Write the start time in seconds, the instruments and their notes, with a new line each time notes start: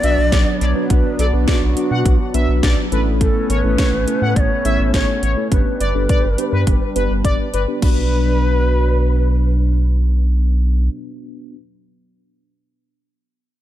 Already playing: analog synth pad F#3 B3 D4, shakuhachi D5
0.03 analog synth bass B1, tine electric piano B3 D4 F#4 B4, analog polysynth E5, closed hi-hat
0.18 analog synth bass B1
0.32 analog synth bass B1, analog polysynth D5, kick, snare, closed hi-hat
0.61 analog synth bass B1, analog polysynth D5, shakuhachi D5, closed hi-hat
0.66 shakuhachi C#5
0.76 tine electric piano B3 D4 F#4 B4
0.90 analog synth bass B1, tine electric piano B3 D4 F#4 B4, shakuhachi B4, kick, closed hi-hat
1.19 analog synth bass B1, shakuhachi A4, analog polysynth D5, closed hi-hat
1.33 analog synth bass B1, tine electric piano B3 D4 F#4 B4
1.48 shakuhachi F#4, analog polysynth D5, kick, snare, closed hi-hat
1.62 analog synth bass B1
1.77 tine electric piano B3 D4 F#4 B4, closed hi-hat
1.91 analog synth bass B2, analog polysynth F#5
2.05 analog synth bass B1, kick, closed hi-hat
2.34 analog synth bass B1, tine electric piano B3 D4 F#4 B4, analog polysynth E5, closed hi-hat
2.49 analog synth bass B1
2.63 analog synth bass B1, analog polysynth D5, kick, snare, closed hi-hat
2.92 analog synth bass A1, tine electric piano A3 C#4 E4 A4, analog synth pad A3 B3 C#4, analog polysynth B4, closed hi-hat
3.21 shakuhachi A4, kick, closed hi-hat
3.50 analog synth bass A1, shakuhachi A#4, analog polysynth C#5, closed hi-hat
3.62 analog synth bass A1, tine electric piano A3 C#4 E4 A4, shakuhachi B4
3.78 analog polysynth C#5, kick, snare, closed hi-hat
3.93 analog synth bass A1
4.07 tine electric piano A3 C#4 E4 A4, closed hi-hat
4.22 analog synth bass A2, analog polysynth F#5
4.36 analog synth bass A1, shakuhachi C#5 D5, kick, closed hi-hat
4.65 analog synth bass A1, tine electric piano A3 C#4 E4 A4, analog polysynth E5, closed hi-hat
4.79 analog synth bass A1
4.94 analog synth bass A1, shakuhachi C#5, analog polysynth C#5, kick, snare, closed hi-hat
5.23 analog synth bass A1, analog polysynth C#5, closed hi-hat
5.37 tine electric piano A3 C#4 E4 A4
5.52 analog synth bass G1, analog synth pad G3 D4 B4, tine electric piano B3 D4 G4 B4, shakuhachi B4, kick, closed hi-hat
5.80 analog synth bass G1, analog polysynth D5, closed hi-hat
5.95 analog synth bass G1, tine electric piano B3 D4 G4 A4
6.09 analog polysynth D5, kick, closed hi-hat
6.24 analog synth bass G1
6.38 tine electric piano B3 D4 G4 B4, closed hi-hat
6.53 analog synth bass G2, analog polysynth B4
6.67 analog synth bass G1, kick, closed hi-hat
6.96 analog synth bass G1, tine electric piano B3 D4 G4 B4, analog polysynth B4, closed hi-hat
7.10 analog synth bass G1
7.25 analog synth bass G1, analog polysynth D5, kick, closed hi-hat
7.54 analog synth bass G1, analog polysynth B4, closed hi-hat
7.68 tine electric piano B3 D4 G4 B4
7.80 analog synth bass B1, analog synth pad B2 F#3 D4, tine electric piano B3 D4 F#4, analog polysynth B4, kick, crash
7.85 tine electric piano B4